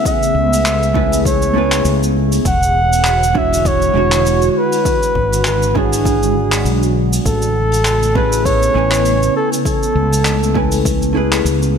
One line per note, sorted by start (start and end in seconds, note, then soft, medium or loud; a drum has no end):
0.00 2.41 C#3 medium
0.00 0.92 A3 medium
0.00 2.41 A3 medium
0.00 2.41 B3 medium
0.00 0.92 C#4 medium
0.00 0.93 E4 medium
0.00 0.93 G#4 medium
0.00 2.41 G#4 medium
0.00 0.94 B4 medium
0.05 1.22 E5 loud
0.05 kick loud
0.05 open hi-hat medium
0.05 cabasa medium
0.23 cabasa soft
0.35 1.84 C#2 medium
0.53 open hi-hat medium
0.53 cabasa medium
0.66 clap medium
0.66 open hi-hat medium
0.66 cabasa medium
0.83 cabasa soft
0.94 1.52 A3 medium
0.94 1.52 C#4 medium
0.94 1.52 E4 medium
0.94 1.52 G#4 medium
0.94 1.53 B4 medium
0.94 kick loud
1.12 open hi-hat medium
1.12 cabasa medium
1.25 2.12 C#5 medium
1.25 kick loud
1.25 open hi-hat medium
1.25 cabasa medium
1.42 cabasa medium
1.53 2.43 A3 medium
1.53 2.43 C#4 medium
1.53 2.44 E4 medium
1.53 2.44 G#4 medium
1.58 2.45 B4 medium
1.72 clap medium
1.72 open hi-hat medium
1.72 cabasa medium
1.85 2.38 C#2 loud
1.85 open hi-hat medium
1.85 cabasa medium
2.03 cabasa medium
2.32 open hi-hat medium
2.32 cabasa medium
2.45 3.88 E1 loud
2.45 7.22 D3 medium
2.45 7.21 G#3 medium
2.45 7.21 F#4 medium
2.45 4.83 C#5 medium
2.45 3.39 F#5 loud
2.45 kick loud
2.45 open hi-hat medium
2.45 cabasa medium
2.63 cabasa soft
2.93 open hi-hat medium
2.93 cabasa medium
3.04 clap medium
3.04 open hi-hat medium
3.04 cabasa medium
3.23 cabasa medium
3.34 3.92 G#3 medium
3.34 3.92 D4 medium
3.34 3.92 E4 medium
3.34 3.92 F#4 medium
3.34 3.93 C#5 medium
3.34 3.69 E5 loud
3.34 kick loud
3.52 open hi-hat medium
3.52 cabasa medium
3.65 4.51 C#5 loud
3.65 kick loud
3.65 open hi-hat medium
3.65 cabasa medium
3.82 cabasa medium
3.94 4.48 E1 loud
3.94 5.71 G#3 medium
3.94 5.72 D4 medium
3.94 5.72 E4 medium
3.94 5.73 F#4 medium
3.94 5.73 C#5 medium
4.12 clap medium
4.12 open hi-hat medium
4.12 cabasa medium
4.25 open hi-hat medium
4.25 cabasa medium
4.42 cabasa soft
4.51 4.59 C#5 medium
4.58 5.46 B4 loud
4.72 open hi-hat medium
4.72 cabasa medium
4.85 7.23 D4 medium
4.85 kick loud
4.85 open hi-hat medium
4.85 cabasa medium
5.03 cabasa soft
5.15 6.65 G#1 medium
5.15 kick medium
5.32 open hi-hat medium
5.32 cabasa medium
5.45 5.79 B4 loud
5.45 clap medium
5.45 open hi-hat medium
5.45 cabasa medium
5.63 cabasa medium
5.75 6.32 G#3 medium
5.75 6.32 D4 medium
5.75 6.32 E4 medium
5.75 6.33 F#4 medium
5.75 6.96 G#4 medium
5.75 6.33 C#5 loud
5.75 kick loud
5.92 open hi-hat medium
5.92 cabasa medium
6.05 kick loud
6.05 open hi-hat medium
6.05 cabasa medium
6.23 cabasa medium
6.51 clap medium
6.51 open hi-hat medium
6.51 cabasa medium
6.65 7.18 B1 medium
6.65 open hi-hat medium
6.65 cabasa medium
6.83 cabasa medium
7.13 open hi-hat medium
7.13 cabasa medium
7.25 8.68 A1 medium
7.25 11.78 C#3 medium
7.25 11.78 A3 medium
7.25 11.78 B3 medium
7.25 8.18 A4 medium
7.25 9.63 G#5 medium
7.25 kick loud
7.25 open hi-hat medium
7.25 cabasa medium
7.42 cabasa medium
7.71 open hi-hat medium
7.71 cabasa medium
7.85 clap medium
7.85 open hi-hat medium
7.85 cabasa medium
8.03 cabasa medium
8.15 8.72 A3 medium
8.15 8.72 C#4 medium
8.15 8.72 E4 medium
8.15 8.73 G#4 medium
8.15 8.47 B4 loud
8.15 8.73 B4 loud
8.15 kick loud
8.32 open hi-hat medium
8.32 cabasa medium
8.45 9.35 C#5 loud
8.45 kick loud
8.45 open hi-hat medium
8.45 cabasa medium
8.63 cabasa medium
8.74 9.28 A1 loud
8.74 10.52 A3 medium
8.74 10.52 C#4 medium
8.74 10.52 E4 medium
8.74 10.53 B4 medium
8.74 10.53 G#5 medium
8.91 clap medium
8.91 open hi-hat medium
8.91 cabasa medium
9.05 open hi-hat medium
9.05 cabasa medium
9.23 cabasa medium
9.37 9.50 A4 medium
9.52 open hi-hat medium
9.52 cabasa medium
9.65 10.82 A4 medium
9.65 kick loud
9.65 open hi-hat medium
9.65 cabasa medium
9.83 cabasa soft
9.95 11.45 C#2 medium
10.12 open hi-hat medium
10.12 cabasa medium
10.25 clap medium
10.25 open hi-hat medium
10.25 cabasa medium
10.43 cabasa soft
10.54 11.12 A3 medium
10.54 11.12 C#4 medium
10.54 11.12 E4 medium
10.54 11.13 B4 medium
10.54 11.12 G#5 medium
10.54 kick loud
10.71 open hi-hat medium
10.71 cabasa medium
10.85 kick loud
10.85 open hi-hat medium
10.85 cabasa medium
11.02 cabasa medium
11.13 11.78 A3 medium
11.13 11.78 C#4 medium
11.13 11.78 E4 medium
11.13 11.78 G#4 medium
11.17 11.78 B4 medium
11.32 clap medium
11.32 open hi-hat medium
11.32 cabasa medium
11.45 11.78 C#2 medium
11.45 open hi-hat medium
11.45 cabasa medium
11.62 cabasa soft